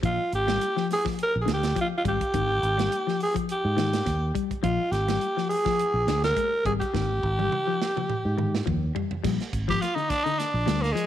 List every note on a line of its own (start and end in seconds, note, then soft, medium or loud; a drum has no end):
0.03 0.17 A#1 loud
0.03 0.20 F3 medium
0.03 0.31 F4 medium
0.03 kick medium
0.03 closed hi-hat medium
0.32 0.57 G#1 medium
0.32 0.87 G4 medium
0.32 closed hi-hat soft
0.48 0.65 G3 medium
0.48 snare medium
0.48 closed hi-hat medium
0.61 closed hi-hat medium
0.77 0.94 F3 medium
0.77 snare soft
0.90 1.05 G#4 loud
0.90 snare soft
0.90 open hi-hat medium
1.05 1.22 F3 medium
1.05 kick medium
1.05 snare soft
1.18 closed hi-hat medium
1.23 1.36 A#4 loud
1.36 1.46 A#1 medium
1.41 1.50 G#4 medium
1.46 1.72 D2 medium
1.46 1.63 D3 medium
1.46 snare medium
1.46 closed hi-hat medium
1.53 1.77 G4 medium
1.63 snare medium
1.63 closed hi-hat medium
1.76 1.93 F3 medium
1.76 kick medium
1.76 closed hi-hat medium
1.81 1.87 F4 medium
1.97 2.02 F4 medium
2.05 2.18 G#1 medium
2.05 2.22 G3 medium
2.05 3.18 G4 loud
2.05 kick medium
2.05 closed hi-hat medium
2.21 kick medium
2.21 closed hi-hat medium
2.33 2.59 G#1 loud
2.33 2.52 D#3 medium
2.33 kick medium
2.33 closed hi-hat medium
2.63 2.87 G#1 medium
2.63 closed hi-hat medium
2.78 2.95 G3 medium
2.78 snare medium
2.78 closed hi-hat medium
2.92 closed hi-hat medium
3.07 3.24 F3 medium
3.07 snare soft
3.20 3.35 G#4 loud
3.20 open hi-hat medium
3.34 3.52 F3 medium
3.34 kick medium
3.34 closed hi-hat medium
3.49 4.33 G4 medium
3.49 closed hi-hat medium
3.65 4.00 G#2 medium
3.77 3.94 D#3 medium
3.77 snare medium
3.77 closed hi-hat medium
3.93 snare medium
3.93 closed hi-hat medium
4.06 4.31 D#2 medium
4.06 muted clean electric guitar stroke medium
4.06 kick medium
4.06 snare soft
4.06 closed hi-hat medium
4.35 4.52 G3 medium
4.35 kick medium
4.35 closed hi-hat medium
4.51 kick medium
4.51 closed hi-hat soft
4.63 4.77 A#1 loud
4.63 4.80 F3 medium
4.63 4.93 F4 loud
4.63 kick medium
4.63 closed hi-hat medium
4.91 5.17 G#1 medium
4.91 5.49 G4 medium
4.91 snare soft
4.91 closed hi-hat medium
5.08 5.26 G3 medium
5.08 snare medium
5.08 closed hi-hat medium
5.21 closed hi-hat medium
5.37 5.54 F3 medium
5.37 snare soft
5.49 6.19 G#4 loud
5.49 open hi-hat medium
5.65 5.83 F3 medium
5.65 kick medium
5.65 snare soft
5.79 closed hi-hat medium
5.94 6.05 A#1 medium
6.07 6.32 D2 medium
6.07 6.26 D3 medium
6.07 snare medium
6.07 closed hi-hat medium
6.23 6.63 A#4 loud
6.23 snare medium
6.23 closed hi-hat medium
6.36 6.54 G#3 medium
6.36 kick medium
6.36 closed hi-hat medium
6.65 6.79 G#1 medium
6.65 6.83 G3 medium
6.65 6.73 G#4 medium
6.65 kick medium
6.65 closed hi-hat medium
6.80 8.62 G4 loud
6.80 kick medium
6.80 closed hi-hat medium
6.94 7.19 G#1 medium
6.94 7.11 D#3 medium
6.94 kick medium
6.94 snare medium
7.23 7.48 G#1 medium
7.23 kick medium
7.39 7.56 G3 medium
7.39 high tom medium
7.52 mid tom medium
7.67 7.85 F3 medium
7.82 snare medium
7.97 8.14 F3 medium
7.97 mid tom medium
8.10 mid tom medium
8.25 8.61 G#2 medium
8.38 8.55 D#3 medium
8.38 mid tom medium
8.55 snare medium
8.66 8.91 D#2 medium
8.66 8.83 F3 medium
8.66 kick medium
8.66 floor tom medium
8.95 9.12 G3 medium
8.95 floor tom medium
9.11 floor tom medium
9.24 9.38 A#1 loud
9.24 9.41 G3 medium
9.24 kick loud
9.24 snare soft
9.24 crash medium
9.40 snare soft
9.40 closed hi-hat soft
9.53 9.77 G#1 medium
9.53 kick medium
9.53 closed hi-hat medium
9.68 9.85 F3 medium
9.68 9.82 G4 medium
9.68 kick medium
9.68 snare soft
9.81 9.96 F4 medium
9.81 snare soft
9.81 closed hi-hat medium
9.95 10.13 D3 medium
9.95 10.11 D#4 medium
9.95 closed hi-hat soft
10.09 10.25 D4 loud
10.09 kick medium
10.09 snare soft
10.09 closed hi-hat medium
10.24 10.43 D3 medium
10.24 10.40 D#4 medium
10.24 closed hi-hat soft
10.39 10.83 D4 medium
10.39 snare soft
10.39 closed hi-hat medium
10.54 10.65 A#1 medium
10.66 10.92 D2 medium
10.66 10.84 G3 medium
10.66 snare medium
10.66 closed hi-hat medium
10.82 10.94 A#3 medium
10.82 snare soft
10.82 closed hi-hat soft
10.93 11.06 F3 medium
10.93 11.06 G#3 medium
10.97 closed hi-hat medium